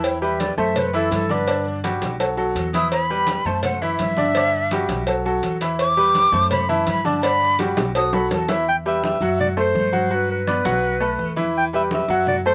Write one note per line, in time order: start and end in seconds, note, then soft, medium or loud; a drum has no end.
0.00 0.52 E2 loud
0.00 0.15 E3 medium
0.00 0.16 E4 medium
0.00 0.16 E5 medium
0.00 0.21 G5 loud
0.00 cowbell loud
0.22 0.51 G3 medium
0.22 0.52 G4 medium
0.22 0.52 B4 medium
0.22 0.41 E5 medium
0.22 high conga soft
0.40 0.57 D5 loud
0.40 cowbell medium
0.40 high conga loud
0.57 1.08 F#2 medium
0.57 0.87 A3 medium
0.57 0.88 A4 medium
0.57 0.88 C5 medium
0.57 0.79 E5 medium
0.57 high conga soft
0.76 0.98 B4 medium
0.76 cowbell loud
0.76 high conga soft
0.76 low conga medium
0.93 1.23 E3 medium
0.93 1.24 E4 loud
0.93 1.13 A4 medium
0.93 1.24 E5 medium
0.93 high conga soft
1.11 1.96 G2 loud
1.11 1.33 A4 medium
1.11 cowbell medium
1.11 high conga medium
1.29 1.45 D3 medium
1.29 1.45 D4 medium
1.29 1.66 B4 loud
1.29 1.45 D5 medium
1.29 high conga medium
1.48 1.77 D3 medium
1.48 1.78 D4 medium
1.48 1.78 D5 medium
1.48 cowbell loud
1.48 high conga soft
1.66 high conga soft
1.84 2.13 G3 medium
1.84 2.14 F#4 medium
1.84 2.14 G4 medium
1.84 cowbell medium
1.84 high conga loud
2.02 2.52 B1 medium
2.02 cowbell medium
2.02 high conga medium
2.20 2.35 F#3 medium
2.20 2.35 F#4 medium
2.20 2.35 A4 medium
2.20 cowbell loud
2.20 high conga soft
2.37 2.67 F#3 medium
2.37 2.67 F#4 medium
2.37 2.68 A4 medium
2.37 high conga soft
2.55 3.40 E2 medium
2.55 cowbell medium
2.55 high conga soft
2.73 3.04 E3 medium
2.73 3.04 E4 medium
2.73 3.04 E5 medium
2.73 2.91 D#6 medium
2.73 cowbell medium
2.73 high conga medium
2.92 3.48 B5 loud
2.92 cowbell loud
2.92 high conga soft
3.10 3.40 G3 medium
3.10 3.40 G4 medium
3.10 3.40 B4 medium
3.10 high conga soft
3.27 cowbell medium
3.27 high conga loud
3.45 3.96 F#2 medium
3.45 3.76 A3 medium
3.45 3.76 A4 medium
3.45 3.76 C5 medium
3.45 3.63 A5 loud
3.45 high conga soft
3.63 3.83 F#5 medium
3.63 cowbell loud
3.63 high conga soft
3.63 low conga medium
3.81 4.11 E3 medium
3.81 4.11 E4 medium
3.81 3.99 E5 loud
3.81 4.11 E5 medium
3.81 high conga soft
3.99 4.84 G2 medium
3.99 5.05 E5 loud
3.99 cowbell medium
3.99 high conga medium
4.17 4.32 D3 medium
4.17 4.32 D4 medium
4.17 4.33 D5 medium
4.17 high conga medium
4.35 4.66 D3 medium
4.35 4.66 D4 medium
4.35 4.66 D5 medium
4.35 cowbell loud
4.35 high conga soft
4.53 high conga soft
4.71 5.02 G3 medium
4.71 5.02 F#4 medium
4.71 5.02 G4 medium
4.71 cowbell medium
4.71 high conga loud
4.88 5.39 B1 medium
4.88 cowbell medium
4.88 high conga loud
5.07 5.22 F#3 medium
5.07 5.23 F#4 medium
5.07 5.23 A4 medium
5.07 cowbell loud
5.07 high conga soft
5.25 5.55 F#3 medium
5.25 5.55 F#4 medium
5.25 5.55 A4 medium
5.25 high conga soft
5.43 6.27 E2 medium
5.43 cowbell medium
5.43 high conga soft
5.61 5.91 E3 medium
5.61 5.91 E4 medium
5.61 5.91 E5 medium
5.61 cowbell medium
5.79 6.50 D6 loud
5.79 cowbell loud
5.79 high conga soft
5.97 6.27 G3 medium
5.97 6.27 G4 medium
5.97 6.27 B4 medium
5.97 high conga soft
6.15 cowbell medium
6.15 high conga loud
6.32 6.83 F#2 loud
6.32 6.62 A3 medium
6.32 6.63 A4 medium
6.32 6.63 C5 medium
6.32 high conga soft
6.51 6.71 B5 medium
6.51 cowbell loud
6.51 high conga soft
6.51 low conga medium
6.69 6.99 E3 medium
6.69 6.99 E4 medium
6.69 6.99 E5 loud
6.69 6.87 A5 loud
6.69 high conga soft
6.69 low conga medium
6.87 7.71 G2 medium
6.87 7.07 B5 loud
6.87 cowbell medium
6.87 high conga medium
7.05 7.20 D3 medium
7.05 7.20 D4 medium
7.05 7.20 D5 medium
7.05 7.24 A5 loud
7.05 high conga medium
7.23 7.53 D3 medium
7.23 7.53 D4 medium
7.23 7.53 D5 medium
7.23 7.58 B5 loud
7.23 cowbell loud
7.41 high conga soft
7.59 7.89 G3 medium
7.59 7.89 F#4 medium
7.59 7.89 G4 medium
7.59 cowbell medium
7.59 high conga loud
7.77 8.27 B1 loud
7.77 cowbell medium
7.77 high bongo medium
7.77 high conga loud
7.95 8.10 F#3 medium
7.95 8.10 F#4 medium
7.95 8.11 A4 medium
7.95 8.15 D#6 loud
7.95 cowbell loud
7.95 high conga soft
8.13 8.43 F#3 medium
8.13 8.43 F#4 medium
8.13 8.43 A4 medium
8.13 8.31 B5 loud
8.13 low bongo medium
8.13 high conga soft
8.31 9.15 E2 medium
8.31 8.52 A5 loud
8.31 cowbell medium
8.31 low bongo medium
8.31 high conga soft
8.48 8.64 E3 medium
8.48 8.64 E4 medium
8.48 8.64 E5 medium
8.48 8.68 E5 loud
8.48 cowbell medium
8.48 low bongo medium
8.68 8.76 G5 loud
8.68 high conga soft
8.86 9.15 G3 medium
8.86 9.15 G4 medium
8.86 9.15 B4 medium
8.86 9.03 E5 loud
8.86 high conga soft
9.04 9.37 E5 loud
9.04 high conga loud
9.21 9.71 F#2 medium
9.21 9.51 F#3 medium
9.21 9.51 F#4 medium
9.21 9.52 F#5 medium
9.21 high conga soft
9.40 9.48 D5 loud
9.40 high conga soft
9.40 low conga medium
9.57 9.87 A3 medium
9.57 9.87 A4 medium
9.57 9.87 C5 medium
9.57 10.16 C5 loud
9.57 high conga soft
9.75 10.59 G2 medium
9.75 high conga medium
9.92 10.07 F#3 medium
9.92 10.08 F#4 medium
9.92 10.08 F#5 medium
9.92 high conga medium
10.10 10.40 F#3 medium
10.10 10.40 F#4 medium
10.10 10.31 B4 loud
10.10 10.41 F#5 medium
10.10 high conga soft
10.30 11.34 B4 loud
10.30 high conga soft
10.47 10.62 B3 medium
10.47 10.62 B4 medium
10.47 10.62 D5 medium
10.47 high conga loud
10.65 11.15 B1 loud
10.65 10.95 F#3 medium
10.65 10.95 F#4 loud
10.65 10.95 F#5 loud
10.65 high conga loud
10.83 high conga soft
11.00 11.30 A3 medium
11.00 11.31 A4 medium
11.00 11.31 B4 medium
11.00 high conga soft
11.19 12.03 E2 medium
11.19 high conga soft
11.36 11.66 E3 medium
11.36 11.66 E4 medium
11.36 11.67 E5 medium
11.36 high conga medium
11.56 11.65 G5 loud
11.56 high conga soft
11.73 12.02 G3 medium
11.73 12.03 G4 medium
11.73 12.03 B4 medium
11.73 11.83 E5 medium
11.73 high conga soft
11.91 12.26 E5 loud
11.91 high conga loud
12.08 12.55 F#2 loud
12.08 12.39 F#3 loud
12.08 12.39 F#4 medium
12.08 12.39 F#5 loud
12.08 high conga soft
12.27 12.36 D5 loud
12.27 high conga soft
12.27 low conga medium
12.45 12.55 A3 medium
12.45 12.55 A4 medium
12.45 12.55 C5 medium
12.45 12.55 C5 loud
12.45 high conga soft